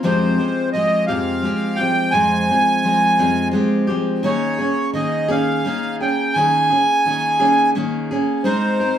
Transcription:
0.03 steel-string acoustic guitar F2 C3 F3 G#3 C4 G4, accordion C5
0.38 steel-string acoustic guitar F3 G#3 C4 G4
0.72 steel-string acoustic guitar F3 G#3 C4, accordion D#5
0.77 steel-string acoustic guitar G4
1.07 steel-string acoustic guitar F2 C3 F3 G#3 C4 G4, accordion F5
1.42 steel-string acoustic guitar F3 G#3 C4 G4
1.76 steel-string acoustic guitar G4, accordion G5
1.80 steel-string acoustic guitar F3 G#3 C4
2.11 steel-string acoustic guitar F2 C3 F3 G#3 C4, accordion G#5
2.51 steel-string acoustic guitar F3 G#3 C4
2.84 steel-string acoustic guitar F3 G#3 C4
3.19 steel-string acoustic guitar F2 C3 F3 G#3 C4
3.52 steel-string acoustic guitar F3 G#3 C4 G4
3.87 steel-string acoustic guitar F3 G#3 C4 G4
4.23 steel-string acoustic guitar D#3 A#3 C#4 G#4, accordion C#5
4.58 steel-string acoustic guitar A#3 C#4 G#4
4.94 steel-string acoustic guitar D#3 A#3 C#4 G#4, accordion D#5
5.28 steel-string acoustic guitar D#3 A#3 C#4 G#4, accordion F5
5.64 steel-string acoustic guitar D#3 A#3 C#4 G#4
6.00 steel-string acoustic guitar A#3 C#4 G#4, accordion G5
6.33 steel-string acoustic guitar D#3 A#3 C#4, accordion G#5
6.38 steel-string acoustic guitar G#4
6.70 steel-string acoustic guitar A#3 C#4 G#4
7.05 steel-string acoustic guitar D#3 A#3 C#4 G#4
7.40 steel-string acoustic guitar D#3 A#3 C#4 G#4
7.75 steel-string acoustic guitar D#3 A#3 C#4 G#4
8.11 steel-string acoustic guitar A#3 C#4 G#4
8.44 steel-string acoustic guitar G#3 C4 D#4 A#4, accordion C5
8.80 steel-string acoustic guitar C4 D#4 A#4

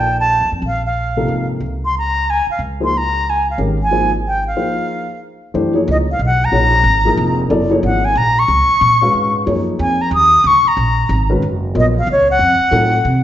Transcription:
Already playing: upright bass A#1, grand piano F3 A#3 D#4 A4 D5
0.00 flute G5
0.20 flute A5
0.41 upright bass D2
0.52 upright bass F2
0.62 upright bass A#1
0.67 flute F5
0.86 flute F5
1.17 grand piano C3 F3 A#3 D#4 A4
1.28 upright bass G#2
1.60 upright bass C#2
1.85 flute C6
1.98 flute A#5
2.30 flute G#5
2.47 muted upright bass stroke
2.51 flute F5
2.59 upright bass C#2
2.80 grand piano F3 A#3 D#4 G#4 C5
2.84 flute C6
2.97 flute A#5
3.30 flute G#5
3.50 flute F5
3.58 upright bass G#1, grand piano D#3 G#3 C#4 G4 A#4
3.83 flute G#5
3.91 grand piano F3 A#3 D#4 G#4 C5
4.28 flute G5
4.47 flute F5
4.56 grand piano F3 A#3 D#4 G#4 C5
5.54 upright bass F#2, grand piano E3 A3 D4 G4 C5
5.74 grand piano F3 A#3 D#4 G#4 C#5
5.88 upright bass C#2, flute D#5
6.11 flute F5
6.19 upright bass B1
6.26 flute F#5
6.45 flute A#5
6.52 upright bass A#1, grand piano F3 A#3 D#4 G#4 C#5
6.84 upright bass G#1
7.05 grand piano F3 A#3 D#4 G#4 A#4
7.17 upright bass F1
7.49 upright bass F#1, grand piano F#3 B3 E4 A4 D5
7.70 grand piano F3 A#3 D#4 G#4 C#5
7.83 upright bass G#1, flute F#5
8.05 flute G#5
8.15 upright bass A#1, flute A#5
8.39 flute C#6
8.48 upright bass C#2
8.69 muted upright bass stroke
8.81 upright bass A#2
9.01 grand piano G#3 C#4 F#4 B4 F5
9.13 upright bass G#2
9.46 upright bass F#2, grand piano F3 A#3 D#4 G#4 C#5
9.79 upright bass F2, flute G#5
10.01 flute A#5
10.11 upright bass D#2, flute D#6
10.44 upright bass C#2, flute C#6
10.65 flute A#5, muted upright bass stroke
10.77 upright bass A#1
11.09 upright bass G#1
11.30 grand piano D#3 G#3 C#4 F#4 B4
11.42 upright bass F#1
11.75 upright bass A#1, grand piano F#3 B3 F4 A#4 D#5
11.80 flute D#5
11.99 flute F5
12.07 upright bass C#2
12.12 flute C#5
12.31 flute F#5
12.39 upright bass F2
12.60 muted upright bass stroke
12.71 upright bass A2, grand piano F#3 C4 D#4 F4 A4
13.05 upright bass C3

